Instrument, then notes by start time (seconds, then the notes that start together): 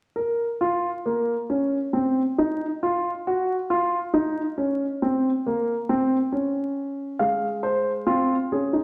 grand piano
0.16 A#4
0.61 F4
1.06 A#3
1.50 C#4
1.93 C4
2.38 D#4
2.83 F4
3.27 F#4
3.70 F4
4.14 D#4
4.58 C#4
5.02 C4
5.46 A#3
5.89 C4
6.32 C#4
7.19 G#3 F5
7.63 C5
8.06 C4 F4
8.52 C#4 G#4
8.73 D#4